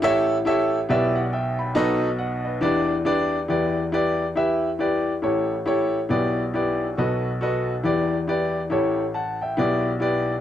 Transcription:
0.02 0.86 A1 medium
0.02 0.86 A2 medium
0.02 0.34 E4 loud
0.02 0.35 G4 loud
0.02 0.35 A4 loud
0.02 0.35 C#5 loud
0.02 0.35 E5 loud
0.45 0.77 E4 loud
0.45 0.78 G4 medium
0.45 0.78 A4 loud
0.45 0.78 C#5 medium
0.45 0.78 E5 loud
0.89 1.72 B1 medium
0.89 1.72 B2 medium
0.89 1.21 E4 medium
0.89 1.21 G4 medium
0.89 1.21 B4 medium
0.89 1.15 D5 medium
0.89 1.17 E5 loud
1.16 1.32 D5 medium
1.16 1.32 F#5 medium
1.33 1.59 E5 medium
1.33 1.58 G5 medium
1.59 2.01 G5 medium
1.59 2.01 B5 medium
1.75 2.59 B1 medium
1.75 2.59 B2 medium
1.75 2.07 D#4 loud
1.75 2.07 F#4 loud
1.75 2.08 A4 loud
1.75 2.08 B4 loud
1.75 2.08 D#5 loud
2.18 2.43 D#5 medium
2.18 2.45 F#5 medium
2.45 2.60 B4 medium
2.45 2.87 D#5 medium
2.61 3.45 E2 medium
2.61 3.45 E3 medium
2.61 2.94 D4 loud
2.61 2.94 E4 medium
2.61 2.94 G4 medium
2.61 2.94 B4 medium
2.61 2.94 D5 loud
3.05 3.37 D4 medium
3.05 3.37 E4 medium
3.05 3.38 G4 medium
3.05 3.38 B4 medium
3.05 3.38 D5 loud
3.48 5.19 E2 medium
3.48 5.19 E3 medium
3.48 3.81 E4 medium
3.48 3.81 G4 medium
3.48 3.81 B4 medium
3.48 3.81 D5 medium
3.92 4.24 E4 medium
3.92 4.25 G4 medium
3.92 4.25 B4 medium
3.92 4.25 D5 loud
4.36 4.68 E4 medium
4.36 4.68 G4 medium
4.36 4.68 B4 medium
4.36 4.68 E5 medium
4.79 5.11 E4 medium
4.79 5.11 G4 medium
4.79 5.12 B4 medium
4.79 5.12 D5 medium
5.22 6.06 A1 medium
5.22 6.06 A2 medium
5.22 5.54 E4 medium
5.22 5.55 G4 medium
5.22 5.55 A4 medium
5.22 5.55 C#5 medium
5.66 5.98 E4 medium
5.66 5.98 G4 medium
5.66 5.98 A4 medium
5.66 5.99 C#5 loud
6.09 6.93 B1 medium
6.09 6.93 B2 medium
6.09 6.41 E4 medium
6.09 6.42 G4 medium
6.09 6.42 B4 medium
6.09 6.42 D5 medium
6.54 6.85 E4 medium
6.54 6.86 G4 medium
6.54 6.86 B4 medium
6.54 6.86 D5 medium
6.97 7.81 B1 medium
6.97 7.81 B2 medium
6.97 7.29 F#4 medium
6.97 7.29 A4 medium
6.97 7.30 B4 medium
6.97 7.30 D#5 medium
7.41 7.73 F#4 medium
7.41 7.73 A4 medium
7.41 7.73 B4 medium
7.41 7.74 D#5 medium
7.84 8.67 E2 medium
7.84 8.67 E3 medium
7.84 8.16 E4 medium
7.84 8.16 G4 medium
7.84 8.16 B4 medium
7.84 8.17 D5 medium
8.27 8.59 E4 medium
8.27 8.60 G4 medium
8.27 8.60 B4 medium
8.27 8.60 D5 medium
8.70 9.54 A1 medium
8.70 9.54 A2 medium
8.70 9.02 E4 medium
8.70 9.03 G4 medium
8.70 9.03 A4 medium
8.70 9.03 C#5 medium
9.14 9.40 F#5 medium
9.14 9.40 A5 medium
9.42 9.83 E5 medium
9.42 9.83 G5 medium
9.57 10.41 B1 medium
9.57 10.41 B2 medium
9.57 9.89 E4 medium
9.57 9.90 G4 medium
9.57 9.90 B4 medium
9.57 9.90 D5 loud
10.00 10.33 E4 medium
10.00 10.33 G4 medium
10.00 10.33 B4 medium
10.00 10.34 D5 loud

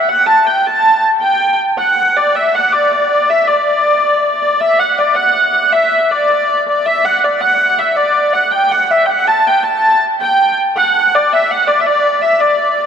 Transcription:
0.09 0.26 F#5 loud
0.26 0.47 A5 loud
0.47 0.66 G5 medium
0.66 1.03 A5 loud
1.21 1.56 G5 medium
1.78 2.17 F#5 medium
2.17 2.35 D5 medium
2.35 2.55 E5 medium
2.55 2.73 F#5 medium
2.73 2.92 D5 medium
2.92 3.30 D5 medium
3.30 3.48 E5 medium
3.48 4.42 D5 medium
4.42 4.61 D5 medium
4.61 4.79 E5 medium
4.79 4.99 F#5 medium
4.99 5.17 D5 medium
5.15 5.53 F#5 medium
5.53 5.72 F#5 medium
5.72 6.12 E5 medium
6.12 6.30 D5 medium
6.30 6.67 D5 medium
6.67 6.86 D5 medium
6.86 7.05 E5 loud
7.05 7.24 F#5 loud
7.24 7.41 D5 medium
7.41 7.79 F#5 loud
7.79 7.97 E5 medium
7.96 8.34 D5 medium
8.33 8.51 F#5 medium
8.51 8.72 G5 medium
8.72 8.91 F#5 medium
8.91 9.06 E5 medium
9.06 9.10 G5 medium
9.10 9.28 F#5 loud
9.27 9.47 A5 loud
9.47 9.64 G5 loud
9.64 9.99 A5 loud
10.21 10.55 G5 loud
10.77 11.15 F#5 loud
11.15 11.33 D5 medium
11.33 11.51 E5 loud
11.51 11.69 F#5 loud
11.68 11.80 D5 medium
11.80 11.87 E5 medium
11.87 12.24 D5 medium
12.22 12.40 E5 medium
12.40 12.86 D5 medium

